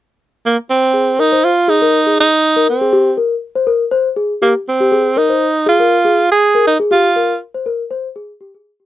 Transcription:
0.46 A#3
0.70 C4
0.94 G#4
1.19 D#4 A#4
1.32 C5
1.44 F4
1.68 D#4 G#4
1.82 A#4
2.07 G#4
2.20 D#4
2.56 A#4
2.70 C4
2.81 G#4
2.93 G4
3.17 A#4
3.55 C5
3.67 A#4
3.91 C5
4.16 G#4
4.42 A#3 G4
4.68 C4
4.80 G4
4.92 G#4
5.16 D#4 A#4
5.29 C5
5.66 F4 G#4
5.80 A#4
6.05 G#4
6.32 G#4
6.55 A#4
6.67 D#4
6.80 G#4
6.91 F4 G4
7.16 A#4
7.54 C5
7.66 A#4
7.91 C5
8.16 G#4
8.41 G4
8.54 G#4
8.80 G4

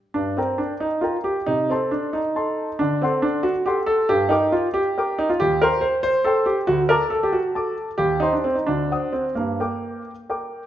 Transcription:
0.14 G2 D4
0.37 C4 A#4 G5 A#5
0.58 D4
0.80 D#4
1.01 F4 A#4 G5 A#5
1.24 G4
1.46 C3 D#4
1.70 C4 A4 A5 C6
1.91 D4
2.13 D#4
2.35 A4 A5 C6
2.79 D3 D4
3.02 C4 A4 F#5 C6
3.22 D4
3.43 F#4
3.66 G4 A4 F#5 C6
3.86 A4
4.09 G2 G4
4.29 D#4 A#4 G5 D6
4.52 F4
4.74 G4
4.98 A#4 G5 D6
5.19 D#4
5.29 F4
5.40 D#2 G4
5.62 A#4 C5 G5 C6
5.81 C5
6.03 C5
6.24 A4 C5 G5 C6
6.46 G4
6.67 D2 F#4
6.89 A4 A#4 A5 D6
7.10 A4
7.23 G4
7.33 F#4
7.55 A4 A5 D6
7.98 D#2 G4
8.20 D#4 C5 G5 C6
8.33 D4
8.44 C4
8.55 D#4
8.67 D2 D4
8.92 C5 F#5 D#6
9.13 C4
9.35 G2 A#3
9.60 A#4 G5 D6
10.29 A#4 G5 D6

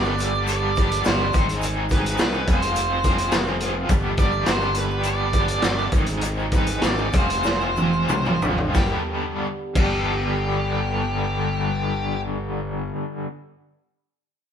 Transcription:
Already playing: G1 G2 D3 G3 B3 G4 D5
0.04 D4 G4, shaker
0.08 G3 B3
0.18 muted overdriven electric guitar stroke, closed hi-hat, shaker
0.34 G3 B3 D4 G4, shaker
0.47 D5, closed hi-hat, shaker
0.76 G3 B3 D4, kick, closed hi-hat, shaker
0.80 G4
0.89 closed hi-hat, shaker
1.04 G1 G2 D3 C5, snare, closed hi-hat, shaker
1.08 G3 B3 D4 G4
1.19 D4 G4, shaker
1.23 G3 B3
1.33 G#1 C3 D#3 G#3 C4 D#4, kick, closed hi-hat, shaker
1.37 D#4 G#4
1.49 C4 D#4 G#4, closed hi-hat
1.62 G#3 C4 D#4, closed hi-hat, shaker
1.66 G#4
1.89 G#3 C4 B4, kick, closed hi-hat, shaker
1.94 D#4 G#4
2.04 closed hi-hat, shaker
2.18 C2 G#3 C4 D#4 G#4, snare, closed hi-hat, shaker
2.22 B4
2.33 C4 D#4 G#4, shaker
2.47 F1 C3 F3 G#3 C4 F4 G#4 C5, kick, closed hi-hat, shaker
2.61 C4 F4 G#4, closed hi-hat, shaker
2.76 closed hi-hat, shaker
3.04 F3 C4 F4 G#4, kick, snare, closed hi-hat, shaker
3.18 closed hi-hat, shaker
3.32 F1 F3 C4 F4 G#4, snare, closed hi-hat, shaker
3.47 C4 F4 G#4, shaker
3.60 F3 C4 F4 G#4, closed hi-hat, shaker
3.75 C4 F4 G#4
3.89 G1 G2 D3 G3 B3 D4 G4, kick, closed hi-hat, shaker
4.17 G3 B3 D4 G4 D5, kick, closed hi-hat, shaker
4.32 shaker
4.46 G1 G2 D3 G3 B3 D4 G4 C5, snare, closed hi-hat, shaker
4.61 G3 B3 D4 G4, shaker
4.75 B4, muted overdriven electric guitar stroke, closed hi-hat, shaker
4.89 G3 B3 D4 G4, shaker
5.03 D5, closed hi-hat, shaker
5.33 G3 B3 D4 G4, kick, closed hi-hat, shaker
5.48 closed hi-hat, shaker
5.62 G1 G2 D3 G3 B3 D4 G4, snare, closed hi-hat, shaker
5.77 G3 B3 D4 G4, shaker
5.92 G#1 G#2 C3 D#3 G#3 C4 D#4 G#4, kick, closed hi-hat, shaker
6.06 G#3 C4 D#4 G#4, closed hi-hat
6.21 G#2 D#3 G#3 C4 D#4 G#4, closed hi-hat, shaker
6.39 shaker
6.51 G#3 C4 D#4 G#4, kick, closed hi-hat, shaker
6.55 B4
6.66 closed hi-hat, shaker
6.82 G#1 G#2 D#3 G#3 C4 D#4 G#4, snare, closed hi-hat, shaker
6.86 D5
6.98 G#3 C4 D#4 G#4, shaker
7.13 F1 F3 G#3 C4 F4 G#4 C5, kick, closed hi-hat, shaker
7.28 C4 F4 G#4, closed hi-hat, shaker
7.43 snare, shaker
7.61 shaker
7.76 F3 C4 F4 G#4, high tom, shaker
7.93 shaker
8.08 B1 F3 C4 F4 G#4, mid tom, shaker
8.25 C4 F4 G#4, mid tom, shaker
8.40 G#1 F3 C4 F4 G#4, floor tom, shaker
8.58 C4 F4 G#4, floor tom
8.74 G1 G2 D3 G3 B3 D4 G4, kick, snare, shaker
9.75 G1 G2 D3 G3 B3 D4 G4, kick, crash, shaker
9.79 G4

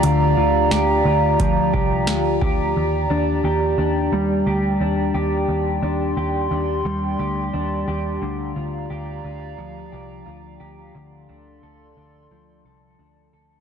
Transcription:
Already playing: F3 F4 G4 D5 F5 A#5
0.03 D2 D3, closed hi-hat
0.37 D2 F4
0.71 D2 G4, snare, closed hi-hat
1.05 D2 F4
1.40 D2 F3, kick, closed hi-hat
1.73 C2 G4, kick
2.07 D2 F4, snare, closed hi-hat
2.41 D2 G4, kick
2.75 D#2 G5
3.10 D#2 D4
3.44 D#2 G4
3.78 D#2 D4
4.12 D#2 G3
4.46 D2 G4
4.80 D#2 D4
5.14 D#2 G4
5.48 D#2 C6
5.82 D#2 D4
6.17 D#2 G4
6.51 D#2 D4
6.85 D#2 G3
7.19 D2 G4
7.53 D#2 D4
7.88 D#2 G4
8.21 D2 D3 D5 F5 A#5
8.56 D2 F4
8.90 D2 G4
9.24 D2 F4
9.58 D2 F3
9.92 C2 G4
10.26 D2 F4
10.60 D2 G4
10.94 D2 D3 A4 D5 C6
11.29 D2 D4
11.63 D2 A4
11.97 D2 D4
12.31 D2 F3
12.64 C2 A4
12.99 D2 D4
13.33 D2 A4

